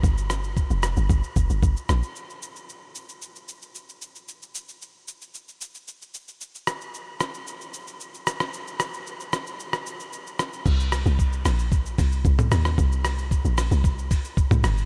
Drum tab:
CC |----------------|----------------|----------------|----------------|
HH |----------------|----------------|----------------|----------------|
SH |xxxxxxxxxxxxxxxx|xxxxx-xxxxxxxxxx|xxxxx-xxxxxxxxxx|xxxxx-xxxxxxxxxx|
SD |--r---r-------r-|----------------|----------------|--r---r-------rr|
T2 |----------------|----------------|----------------|----------------|
BD |o---o---o-o-o---|----------------|----------------|----------------|

CC |----------------|x---------------|----------------|
HH |----------------|--o---o---o---o-|--o---o---o---o-|
SH |xxxxxxxxxxxxxxxx|xxxxxxxxxxxxxxxx|xxxxxxxxxxxxxxxx|
SD |--r---r--r----r-|--r---r-------rr|--r---r-------r-|
T2 |----------------|-------------o--|-------------o--|
BD |----------------|o---o---o-o-o---|o---o---o-o-o---|